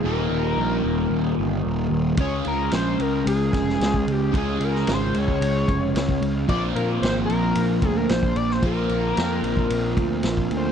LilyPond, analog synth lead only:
\new Staff \with { instrumentName = "Analog synth lead" } { \time 4/4 \key des \lydian \tempo 4 = 112 bes'2. r4 | des''8 bes'8 c''8 bes'8 aes'4. g'8 | aes'8 bes'8 c''8 des''2 r8 | d''8 bes'8 c''8 bes'4 aes'16 bes'16 c''8 d''16 c''16 |
bes'2. r8 c''8 | }